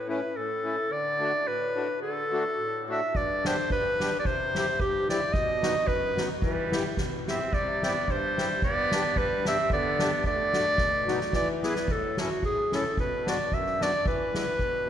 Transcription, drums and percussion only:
3.15 kick
3.45 snare
3.70 kick
4.00 snare
4.25 kick
4.55 snare
4.80 kick
5.09 snare
5.34 kick
5.63 snare
5.88 kick
6.17 snare
6.42 kick
6.72 snare
6.97 kick, snare
7.27 snare
7.53 kick
7.83 snare
8.08 kick
8.38 snare
8.62 kick
8.91 snare
9.16 kick
9.45 snare
9.70 kick
9.99 snare
10.24 kick
10.53 snare
10.78 kick, snare
11.08 snare
11.21 snare
11.33 kick, snare
11.63 snare
11.75 snare
11.87 kick, crash
12.17 snare
12.43 kick
12.72 snare
12.97 kick
13.27 snare
13.52 kick
13.66 snare
13.81 snare
14.06 kick
14.34 snare
14.59 kick

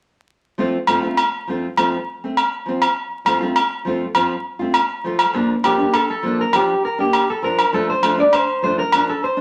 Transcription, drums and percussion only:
0.87 low agogo
1.17 low agogo
1.77 low agogo
2.37 low agogo
2.82 low agogo
3.26 low agogo
3.56 low agogo
4.15 low agogo
4.74 low agogo
5.19 low agogo
5.64 low agogo
5.94 low agogo
6.53 low agogo
7.13 low agogo
7.59 low agogo
8.03 low agogo
8.33 low agogo
8.92 low agogo

